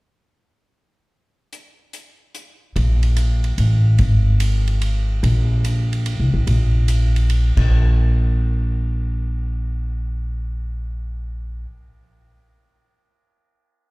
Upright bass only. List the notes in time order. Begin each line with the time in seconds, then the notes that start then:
2.76 A#1
3.58 A1
3.99 G#1
5.23 A#1
6.20 C2
6.34 A1
6.47 A#1
7.57 A#1